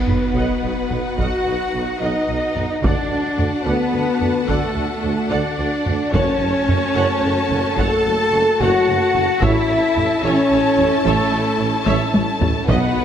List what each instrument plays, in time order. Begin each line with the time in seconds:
Already playing: cello section B3, french horn section B3, string section D#4 F#4 B4 F#5, violin section B4 F#5, flute B4, sub drop
0.07 tuba B1, double bass section B1, viola section B4 D#5, taiko low-mid
0.34 tuba B1, double bass section B1, viola section D#5 F#5
0.62 tuba B1, double bass section B1, viola section D#5
0.90 double bass section B1, tuba B1, viola section B4 D#5, taiko low-mid
1.18 tuba B1, double bass section B1, cello section F#4, french horn section F#4, viola section D#5 F#5, flute F#5, violin section F#5, taiko
1.46 tuba B1, double bass section B1, viola section D#5
1.73 tuba B1, double bass section B1, viola section B4 D#5
2.00 tuba B1, double bass section B1, cello section D#4, french horn section D#4, flute D#5, violin section D#5, viola section D#5 F#5
2.28 double bass section B1, tuba B1, viola section D#5
2.55 tuba B1, double bass section B1, viola section B4 D#5, taiko low-mid
2.82 double bass section D2, tuba D2, cello section D4, string section D4 F#4 A4 A5, french horn section D4, violin section D5 F#5, flute D5, viola section D5 F#5, taiko
3.09 double bass section D2, tuba D2, viola section D5
3.38 tuba D2, double bass section D2, viola section A4 D5, taiko low-mid
3.64 tuba D2, double bass section D2, french horn section B3, cello section B3, violin section B4, flute B4, viola section D5 F#5
3.92 tuba D2, double bass section D2, viola section D5
4.20 tuba D2, double bass section D2, viola section A4 D5, taiko low-mid
4.47 tuba D2, double bass section D2, cello section A3, french horn section A3, flute A4, violin section A4, viola section D5 F#5, taiko
4.74 tuba D2, double bass section D2, viola section D5
5.02 tuba D2, double bass section D2, viola section A4 D5
5.29 tuba D2, double bass section D2, cello section D4, french horn section D4, flute D5, viola section D5 F#5, violin section D5
5.58 tuba D2, double bass section D2, viola section D5
5.85 double bass section D2, tuba D2, viola section A4 D5, taiko low-mid
6.12 double bass section F#1, tuba F#1, timpani F#2, string section A3 F#4 A4 A5, cello section C#4, french horn section C#4, flute C#5, viola section C#5 F#5, violin section C#5 A5, taiko
6.40 double bass section F#1, tuba F#1, viola section C#5
6.67 double bass section F#1, tuba F#1, viola section A4 C#5, taiko low-mid
6.95 double bass section F#1, tuba F#1, viola section C#5 F#5
7.23 double bass section F#1, tuba F#1, viola section C#5
7.50 double bass section F#1, tuba F#1, viola section A4 C#5, taiko low-mid
7.78 double bass section F#1, tuba F#1, french horn section A4, cello section A4, viola section C#5 F#5, violin section A5, flute A5, taiko
8.06 double bass section F#1, tuba F#1, viola section C#5
8.32 double bass section F#1, tuba F#1, viola section A4 C#5
8.60 double bass section F#1, tuba F#1, cello section F#4, french horn section F#4, viola section C#5 F#5, flute F#5, violin section F#5
8.87 tuba F#1, double bass section F#1, viola section C#5
9.15 double bass section F#1, tuba F#1, viola section A4 C#5, taiko low-mid
9.41 double bass section A1, tuba A1, string section C#4 E4 A4 A5, french horn section E4, cello section E4, viola section C#5 E5, violin section E5 A5, flute E5, taiko
9.69 double bass section A1, tuba A1, viola section C#5
9.96 double bass section A1, tuba A1, viola section A4 C#5, taiko low-mid
10.23 double bass section A1, tuba A1, cello section C#4, french horn section C#4, violin section C#5, flute C#5, viola section C#5 E5
10.51 tuba A1, double bass section A1, viola section C#5
10.78 double bass section A1, tuba A1, viola section A4 C#5, taiko low-mid
11.04 tuba A1, double bass section A1, cello section A3, french horn section A3, violin section A4, flute A4, viola section C#5 E5, taiko
11.32 double bass section A1, tuba A1, viola section C#5
11.59 double bass section A1, tuba A1, viola section A4 C#5
11.86 tuba A1, double bass section A1, viola section C#5 E5, taiko high
12.13 tuba A1, double bass section A1, viola section C#5, taiko high
12.40 tuba A1, double bass section A1, viola section A4 C#5, taiko low
12.67 tuba B1, double bass section B1, timpani B2, cello section B3, french horn section B3, string section D#4 F#4 B4 F#5, viola section B4 D#5, violin section B4 F#5, flute B4, taiko
12.94 tuba B1, double bass section B1, viola section B4